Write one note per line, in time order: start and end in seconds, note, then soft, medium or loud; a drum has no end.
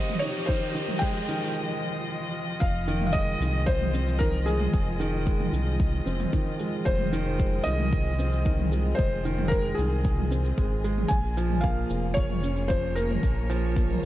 0.00 0.49 D#3 medium
0.00 11.11 F3 medium
0.00 1.02 G#3 loud
0.00 2.64 C4 medium
0.00 0.22 D#4 medium
0.00 14.05 F4 medium
0.00 2.61 G4 medium
0.00 0.23 D#5 loud
0.00 11.96 D#5 medium
0.00 riser medium
0.10 mid tom medium
0.19 0.47 D#4 medium
0.19 0.48 C#5 medium
0.19 shaker medium
0.46 0.73 D#3 medium
0.46 1.02 C5 medium
0.46 kick loud
0.46 shaker soft
0.75 1.00 D#3 medium
0.75 shaker medium
0.88 mid tom medium
0.99 1.27 G#3 loud
0.99 1.55 G5 loud
0.99 kick loud
0.99 shaker soft
1.28 1.54 D#3 loud
1.28 shaker medium
2.60 3.36 F1 loud
2.60 3.05 F5 loud
2.60 kick loud
2.60 shaker soft
2.88 3.13 D#3 loud
2.88 shaker medium
3.01 14.05 G#4 medium
3.01 mid tom medium
3.06 3.14 F5 medium
3.13 3.30 G#3 medium
3.13 3.68 D#5 loud
3.13 kick medium
3.13 shaker soft
3.40 4.68 C2 loud
3.40 3.66 D#3 medium
3.40 shaker medium
3.66 4.22 C5 loud
3.66 kick loud
3.66 shaker soft
3.81 mid tom medium
3.94 4.19 C4 medium
3.94 shaker medium
4.08 shaker soft
4.19 4.46 D#3 medium
4.19 4.47 A#4 medium
4.19 kick loud
4.19 shaker soft
4.46 4.72 G#3 medium
4.46 6.02 G#4 medium
4.46 shaker medium
4.60 mid tom medium
4.74 5.48 F1 loud
4.74 kick loud
4.74 shaker soft
5.00 5.25 D#3 loud
5.00 shaker medium
5.27 5.42 G#3 medium
5.27 kick loud
5.27 shaker soft
5.40 mid tom medium
5.53 6.01 C2 loud
5.53 5.78 D#3 medium
5.53 shaker medium
5.80 kick loud
5.80 shaker soft
6.06 6.26 F1 medium
6.06 6.31 C4 medium
6.06 shaker medium
6.20 mid tom medium
6.20 shaker soft
6.33 6.58 D#3 medium
6.33 kick loud
6.33 shaker soft
6.60 6.85 G#3 medium
6.60 shaker medium
6.85 7.61 F1 loud
6.85 7.61 C5 medium
6.85 kick loud
6.85 shaker soft
6.99 mid tom medium
7.12 7.38 D#3 loud
7.12 shaker medium
7.39 7.54 G#3 medium
7.39 kick loud
7.39 shaker soft
7.64 8.94 C2 loud
7.64 7.91 D#3 medium
7.64 9.01 D#5 loud
7.64 shaker medium
7.80 mid tom medium
7.93 kick loud
7.93 shaker soft
8.19 8.44 C4 medium
8.19 shaker medium
8.32 shaker soft
8.45 8.71 D#3 medium
8.45 kick loud
8.45 shaker soft
8.59 mid tom medium
8.72 8.97 G#3 medium
8.72 shaker medium
8.95 9.51 C5 medium
8.95 kick loud
8.95 shaker soft
8.99 9.73 F1 loud
9.25 9.50 D#3 loud
9.25 shaker medium
9.38 mid tom medium
9.48 9.67 G#3 medium
9.48 9.74 A#4 medium
9.48 kick loud
9.48 shaker soft
9.75 10.53 C2 loud
9.75 10.03 D#3 medium
9.75 10.79 G#4 medium
9.75 shaker medium
10.05 kick loud
10.05 shaker soft
10.18 mid tom medium
10.31 10.56 C4 medium
10.31 shaker medium
10.45 shaker soft
10.57 11.06 G#1 medium
10.57 10.73 G#3 medium
10.57 kick loud
10.57 shaker soft
10.84 11.10 G#3 medium
10.84 shaker medium
10.98 mid tom medium
11.08 11.86 A#1 loud
11.08 14.05 A#3 medium
11.08 11.64 G#5 loud
11.08 kick loud
11.08 shaker soft
11.37 11.63 F3 loud
11.37 shaker medium
11.50 mid tom medium
11.61 11.79 A#3 medium
11.61 12.17 F5 loud
11.61 kick loud
11.61 shaker soft
11.90 13.18 F1 loud
11.90 12.16 F3 medium
11.90 shaker medium
12.14 12.70 C#5 medium
12.14 kick loud
12.14 shaker soft
12.18 14.05 C#5 medium
12.30 mid tom medium
12.43 12.68 C#4 medium
12.43 shaker medium
12.56 shaker soft
12.68 12.95 F3 medium
12.68 12.97 C5 medium
12.68 kick loud
12.68 shaker soft
12.95 13.22 A#3 medium
12.95 14.05 A#4 medium
12.95 shaker medium
13.10 mid tom medium
13.23 13.98 A#1 loud
13.23 kick loud
13.23 shaker soft
13.50 13.75 F3 loud
13.50 shaker medium
13.76 13.91 A#3 medium
13.76 kick loud
13.76 shaker soft
13.90 mid tom medium